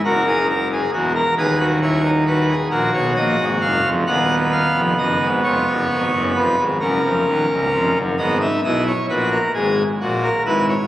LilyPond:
<<
  \new Staff \with { instrumentName = "Pipe organ" } { \time 6/8 \key fis \mixolydian \tempo 4. = 44 << { ais'4. b'8 cis''8 b'8 | ais'16 cis''16 dis''8 eis''8 fis''8 eis''8 dis''8 | cis''4 b'8 ais'4. | \key gis \minor dis''16 e''16 dis''16 cis''16 b'16 ais'16 gis'8. ais'16 b'16 cis''16 | } \\ { fis'16 gis'16 ais'16 gis'16 fis'16 ais'16 gis'16 fis'16 e'16 dis'16 fis'16 gis'16 | fis'4. b4.~ | b4. cis'4. | b16 dis'16 e'8 fis'8 r8 fis'8 e'8 | } >> }
  \new Staff \with { instrumentName = "Pipe organ" } { \clef bass \time 6/8 \key fis \mixolydian <fis,, fis,>4 <e,, e,>8 <dis,, dis,>4. | <ais,, ais,>16 <b,, b,>16 <ais,, ais,>16 <gis,, gis,>16 <fis,, fis,>16 <eis,, eis,>16 <dis,, dis,>8. <eis,, eis,>16 <fis,, fis,>16 <gis,, gis,>16 | <eis,, eis,>16 <fis,, fis,>16 <gis,, gis,>16 <fis,, fis,>16 <eis,, eis,>16 <gis,, gis,>16 <fis,, fis,>16 <eis,, eis,>16 <dis,, dis,>16 <cis,, cis,>16 <eis,, eis,>16 <fis,, fis,>16 | \key gis \minor <gis,, gis,>8 <b,, b,>8 <ais,, ais,>8 <gis,, gis,>8 <ais,, ais,>8 <gis,, gis,>8 | }
>>